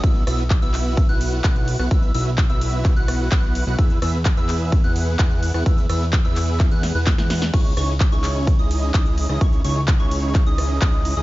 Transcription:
<<
  \new Staff \with { instrumentName = "Digital synth lead" } { \time 4/4 \key cis \minor \tempo 4 = 128 e'''8 e'''16 r8 e'''4 fis'''8. fis'''8. fis'''16 | e'''8 e'''16 r8 e'''4 fis'''8. fis'''8. fis'''16 | e'''8 e'''16 r8 e'''4 fis'''8. fis'''8. fis'''16 | e'''8 e'''16 r8 e'''4 fis'''8 fis'''16 r16 fis'''8 r16 |
cis'''8 cis'''16 r8 cis'''4 dis'''8. dis'''8. dis'''16 | cis'''8 cis'''16 r8 cis'''4 dis'''8. dis'''8. dis'''16 | }
  \new Staff \with { instrumentName = "Supersaw synth" } { \time 4/4 \key cis \minor <b e' fis' b' e''>8 <b e' fis' b' e''>16 r8 <b e' fis' b' e''>4 <b e' fis' b' fis''>8. <b e' fis' b' fis''>8. <b e' fis' b' fis''>16 | <b e' fis' b' e''>8 <b e' fis' b' e''>16 r8 <b e' fis' b' e''>4 <b e' fis' b' fis''>8. <b e' fis' b' fis''>8. <b e' fis' b' fis''>16 | <b e' gis' b' e''>8 <b e' gis' b' e''>16 r8 <b e' gis' b' e''>4 <b e' gis' b' fis''>8. <b e' gis' b' fis''>8. <b e' gis' b' fis''>16 | <b e' gis' b' e''>8 <b e' gis' b' e''>16 r8 <b e' gis' b' e''>4 <b e' gis' b' fis''>8 <b e' gis' b' fis''>16 r16 <b e' gis' b' fis''>8 r16 |
<cis' dis' e' gis' cis''>8 <cis' dis' e' gis' cis''>16 r8 <cis' dis' e' gis' cis''>4 <cis' dis' e' gis' dis''>8. <cis' dis' e' gis' dis''>8. <cis' dis' e' gis' dis''>16 | <cis' dis' e' gis' cis''>8 <cis' dis' e' gis' cis''>16 r8 <cis' dis' e' gis' cis''>4 <cis' dis' e' gis' dis''>8. <cis' dis' e' gis' dis''>8. <cis' dis' e' gis' dis''>16 | }
  \new Staff \with { instrumentName = "Analog synth bass" } { \clef bass \time 4/4 \key cis \minor b,,8 b,,8. b,,4 b,,8. b,,8. b,,16 | b,,8 b,,8. b,,4 b,,8. b,,8. b,,16 | e,8 e,8. e,4 e,8. e,8. e,16 | e,8 e,8. e,4 e,8 e,8 e,8. |
cis,8 cis,8. cis,4 cis,8. cis,8. cis,16 | cis,8 cis,8. cis,4 cis,8. cis,8. cis,16 | }
  \new DrumStaff \with { instrumentName = "Drums" } \drummode { \time 4/4 <hh bd>16 hh16 <hho cymr ss>16 hh16 <hc hh bd>16 hh16 <hc hho cymr>16 hh16 <hh bd>16 hh16 <hho cymr>16 hh16 <hc hh bd>16 hh16 <hho cymr>16 <hh ss>16 | <hh bd>16 hh16 <hho cymr>16 hh16 <hc hh bd>16 hh16 <hho cymr>16 hh16 <hc hh bd>16 hh16 <hho cymr ss>16 hh16 <hc hh bd>16 hh16 <hho cymr>16 hh16 | <hh bd>16 hh16 <hho cymr ss>16 hh16 <hc hh bd>16 hh16 <hc hho cymr>16 hh16 <hh bd>16 hh16 <hho cymr>16 hh16 <hc hh bd>16 hh16 <hho cymr>16 ss16 | <hh bd>16 hh16 <hho cymr ss>16 hh16 <hc hh bd>16 hh16 <hc hho cymr>16 hh16 <hc hh bd>16 hh16 <hho cymr sn>16 hh16 <hc hh bd sn>16 <hh sn>16 <hho cymr sn>16 sn16 |
<cymc hh bd>16 hh16 <hho cymr ss>16 hh16 <hc hh bd>16 hh16 <hc hho cymr>16 hh16 <hh bd>16 hh16 <hho cymr>16 hh16 <hc hh bd>16 hh16 <hho cymr>16 ss16 | <hh bd>16 hh16 <hho cymr>16 hh16 <hc hh bd>16 hh16 <hho cymr>16 hh16 <hc hh bd>16 hh16 <hho cymr ss>16 hh16 <hc hh bd>16 hh16 <hho cymr>16 hh16 | }
>>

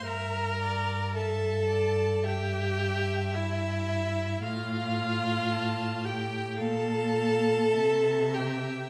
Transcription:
<<
  \new Staff \with { instrumentName = "Violin" } { \time 4/4 \key f \major \tempo 4 = 55 bes''4 a''4 g''4 e''4 | f''4. g''8 a''4. g''8 | }
  \new Staff \with { instrumentName = "Violin" } { \time 4/4 \key f \major e''8 d''8 e''8 d''8 e''2 | f''4 a''8 g''8 f''4 e''4 | }
  \new Staff \with { instrumentName = "Viola" } { \time 4/4 \key f \major bes'4 a'4 g'4 e'4 | f'4. g'8 a'4. g'8 | }
  \new Staff \with { instrumentName = "Cello" } { \clef bass \time 4/4 \key f \major g,1 | a,2 bes,4 c4 | }
>>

